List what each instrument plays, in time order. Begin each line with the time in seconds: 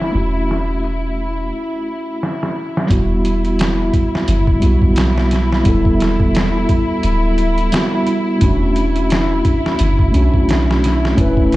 Already playing: 808-style bass E1, tine electric piano C#4 D4 F#4, violin section E4
0.01 snare
0.11 808-style bass E1, tine electric piano A3 C#4 E4, closed hi-hat
0.17 tine electric piano F#4
0.49 snare, closed hi-hat
0.84 closed hi-hat
2.23 snare
2.43 snare
2.77 snare
2.87 808-style bass E1, tine electric piano G3 B3 E4, kick, closed hi-hat
2.91 violin section E4, tine electric piano F#4
3.25 closed hi-hat
3.45 closed hi-hat
3.59 snare, closed hi-hat
3.93 kick, closed hi-hat
4.15 snare
4.28 808-style bass F#1, closed hi-hat
4.47 kick
4.60 808-style bass B1, tine electric piano G3 B3 E4, closed hi-hat
4.66 tine electric piano F#4
4.82 kick
4.96 snare, closed hi-hat
5.18 snare
5.31 snare, closed hi-hat
5.52 snare
5.64 808-style bass E1, tine electric piano G3 B3 E4, kick, closed hi-hat
5.69 tine electric piano A4
5.85 kick
6.00 snare, closed hi-hat
6.20 kick
6.35 snare, closed hi-hat
6.69 kick, closed hi-hat
7.03 808-style bass D1, closed hi-hat
7.38 closed hi-hat
7.58 closed hi-hat
7.72 tine electric piano G3 B3 E4 F#4, snare, closed hi-hat
8.07 closed hi-hat
8.39 808-style bass E1, tine electric piano A3 C#4 D4, kick, closed hi-hat
8.44 tine electric piano F#4
8.76 closed hi-hat
8.96 closed hi-hat
9.10 snare, closed hi-hat
9.45 kick, closed hi-hat
9.66 snare
9.79 808-style bass F#1, closed hi-hat
9.99 kick
10.12 808-style bass B1, tine electric piano A3 C#4 D4, closed hi-hat
10.17 tine electric piano F#4
10.34 kick
10.49 snare, closed hi-hat
10.71 snare
10.84 snare, closed hi-hat
11.05 snare
11.15 808-style bass E1, tine electric piano A3 C#4 E4, kick, closed hi-hat
11.21 tine electric piano B4
11.37 kick
11.52 closed hi-hat